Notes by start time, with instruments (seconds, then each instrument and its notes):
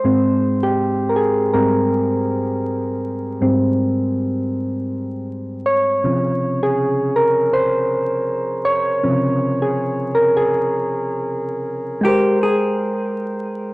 Already playing: synth keys C5
0.04 synth keys G#2 G#3 C4
0.63 synth keys G4
1.09 synth keys A#4
1.16 synth keys G#4
1.54 synth keys G#2 G3 C4 A#4
3.41 synth keys G#2 G3 C4
5.66 synth keys C#5
6.04 synth keys C3 C#3 F3
6.63 synth keys G#4
7.16 synth keys A#4
7.53 synth keys C5
8.65 synth keys C#5
9.04 synth keys C3 C#3 F3
9.62 synth keys G#4
10.15 synth keys A#4
10.37 synth keys G#4
12.01 synth keys G#3 G5, hollow-body jazz guitar G4
12.06 synth keys A#4 C5
12.43 hollow-body jazz guitar G#4